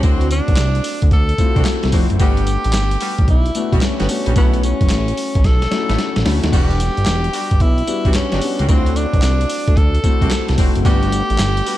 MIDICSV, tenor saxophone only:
0, 0, Header, 1, 2, 480
1, 0, Start_track
1, 0, Tempo, 540541
1, 32, Time_signature, 4, 2, 24, 8
1, 10458, End_track
2, 0, Start_track
2, 0, Title_t, "Tenor saxophone"
2, 0, Program_c, 0, 66
2, 46, Note_on_c, 0, 60, 98
2, 279, Note_off_c, 0, 60, 0
2, 283, Note_on_c, 0, 62, 107
2, 962, Note_off_c, 0, 62, 0
2, 1007, Note_on_c, 0, 69, 112
2, 1684, Note_off_c, 0, 69, 0
2, 1977, Note_on_c, 0, 67, 112
2, 2889, Note_off_c, 0, 67, 0
2, 2934, Note_on_c, 0, 64, 101
2, 3366, Note_on_c, 0, 60, 67
2, 3379, Note_off_c, 0, 64, 0
2, 3406, Note_on_c, 0, 61, 99
2, 3420, Note_off_c, 0, 60, 0
2, 3879, Note_off_c, 0, 61, 0
2, 3886, Note_on_c, 0, 59, 106
2, 4103, Note_off_c, 0, 59, 0
2, 4127, Note_on_c, 0, 61, 101
2, 4848, Note_on_c, 0, 69, 107
2, 4862, Note_off_c, 0, 61, 0
2, 5560, Note_off_c, 0, 69, 0
2, 5804, Note_on_c, 0, 67, 111
2, 6768, Note_on_c, 0, 64, 102
2, 6781, Note_off_c, 0, 67, 0
2, 7237, Note_off_c, 0, 64, 0
2, 7242, Note_on_c, 0, 61, 94
2, 7725, Note_on_c, 0, 60, 101
2, 7739, Note_off_c, 0, 61, 0
2, 7966, Note_on_c, 0, 62, 104
2, 7979, Note_off_c, 0, 60, 0
2, 8680, Note_on_c, 0, 69, 106
2, 8693, Note_off_c, 0, 62, 0
2, 9396, Note_off_c, 0, 69, 0
2, 9648, Note_on_c, 0, 67, 127
2, 10458, Note_off_c, 0, 67, 0
2, 10458, End_track
0, 0, End_of_file